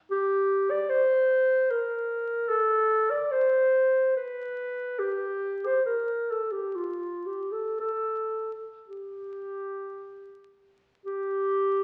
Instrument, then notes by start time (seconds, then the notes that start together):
clarinet
0.11 G4
0.70 D5
0.89 C5
1.70 A#4
2.49 A4
3.11 D5
3.32 C5
4.16 B4
4.99 G4
5.66 C5
5.86 A#4
6.31 A4
6.51 G4
6.75 F4
7.26 G4
7.52 A4
7.79 A4
8.88 G4
11.06 G4